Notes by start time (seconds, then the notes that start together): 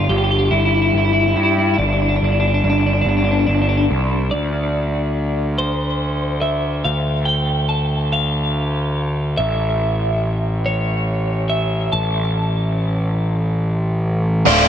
0.04 F4
0.09 G1 G4
0.18 G4
0.24 G4
0.31 G4
0.39 G4
0.45 G4
0.51 G1 E4
0.59 E4
0.65 E4
0.74 E4
0.82 E4
0.89 E4
0.93 G1
0.98 E4
1.05 E4
1.13 E4
1.20 E4
1.28 E4
1.36 G2 E4
1.43 E4
1.51 E4
1.58 E4
1.66 E4
1.74 E4
1.78 G1 D4
1.86 D4
1.93 D4
2.02 D4
2.09 D4
2.16 D4
2.21 G1 D4
2.32 D4
2.40 D4
2.48 D4
2.54 D4
2.64 G1 D4
2.70 D4
2.78 D4
2.86 D4
2.94 D4
3.01 G1 D4
3.09 D4
3.17 D4
3.24 D4
3.32 D4
3.39 D4
3.47 G1 D4
3.55 D4
3.62 D4
3.69 D4
3.77 D4
3.91 C2
4.31 D2 D5
5.58 C5
6.42 E5
6.84 D2 F5
7.25 G5
7.69 A5
8.13 F5
9.38 A1 E5
10.66 C#5
11.50 E5
11.92 A1 A5
14.46 D1 D2 A2 D3 A3 C4 F4 D5
14.54 D5
14.61 D5